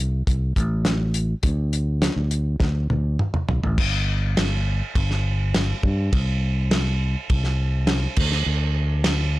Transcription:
Already playing: C2
0.27 C2, kick, closed hi-hat
0.56 A1, kick, closed hi-hat
0.85 snare, closed hi-hat
1.14 closed hi-hat
1.43 D2, kick, closed hi-hat
1.73 closed hi-hat
2.02 snare, closed hi-hat
2.16 D2
2.31 closed hi-hat
2.60 D2, kick, snare
2.90 D2, high tom
3.19 mid tom
3.34 mid tom
3.49 B1, floor tom
3.64 A1, floor tom
3.78 G1, kick, crash
4.37 snare, ride bell
4.95 G1, kick, ride bell
5.11 snare
5.54 snare, ride bell
5.83 G2, kick
6.13 C2, kick, ride bell
6.71 snare, ride bell
7.30 C2, kick, ride bell
7.44 snare
7.87 snare, ride bell
8.16 D2, kick, crash
8.32 snare
8.46 D2
9.04 snare, ride bell

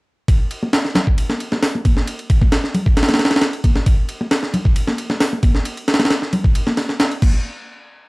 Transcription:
0.28 kick, ride
0.51 ride
0.63 muted conga
0.73 snare, ride
0.85 snare
0.95 snare, ride, low conga
1.07 kick
1.18 ride
1.29 snare, high conga
1.40 ride
1.52 snare, muted conga
1.63 snare, open hi-hat
1.75 muted conga
1.85 kick, ride, high conga
1.97 snare
2.07 ride
2.19 ride
2.30 kick, ride
2.41 kick, muted conga
2.52 snare, ride
2.64 snare
2.74 ride, low conga
2.86 kick
2.97 snare, ride
3.03 snare, ride
3.09 snare, ride, high conga
3.14 snare, ride
3.19 snare, ride
3.25 snare, ride
3.31 snare, ride
3.36 snare, ride
3.41 snare, ride
3.53 ride
3.64 kick, ride, high conga
3.76 snare, muted conga
3.86 kick, ride
4.09 ride
4.21 muted conga
4.31 snare, ride
4.43 snare
4.54 ride, low conga
4.65 kick
4.76 ride
4.87 snare, high conga
4.98 ride
5.10 snare, muted conga
5.20 snare, open hi-hat
5.33 muted conga
5.43 kick, ride, high conga
5.55 snare
5.65 ride
5.77 ride
5.88 snare, ride
5.94 snare, ride
5.99 snare, ride, muted conga
6.05 snare, ride
6.10 snare, ride
6.22 snare
6.33 ride, low conga
6.44 kick
6.55 ride
6.67 snare, high conga
6.77 snare, ride
6.89 snare
7.00 snare, ride
7.11 ride
7.22 kick, crash, high conga
7.34 muted conga

